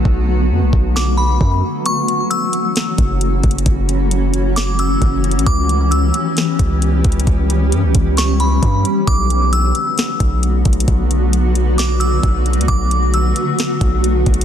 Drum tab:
HH |------------------------|x--x--x--x--x--x--x--xxx|x--x--x--x--x--x--x--xxx|x--x--x--x--x--x--x--xxx|
SD |------------o-----------|------------o-----------|------------o-----------|------------o-----------|
BD |o--------o--------o-----|---------------o-----o--|o-----------------o-----|o--------------o-----o--|

HH |x--x--x--x--x--x--x--x--|x--x--x--x--x--x--x--xxx|x--x--x--x--x--x--x--xxx|x--x--x--x--x--x--x--xxx|
SD |------------o-----------|------------o-----------|------------o-----------|------------o-----------|
BD |o--------o--------o-----|o--------------o-----o--|o-----------------o-----|o--------------o-----o--|